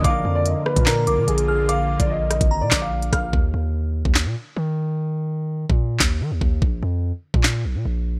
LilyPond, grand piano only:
\new Staff \with { instrumentName = "Grand piano" } { \time 4/4 \key bes \phrygian \tempo 4 = 146 f''8. d''16 ees''8 ces''8 bes'8 bes'8 aes'8 aes'8 | f''8. d''16 ees''8 ees''8. d''8 f''8. f''8 | r1 | r1 |
r1 | }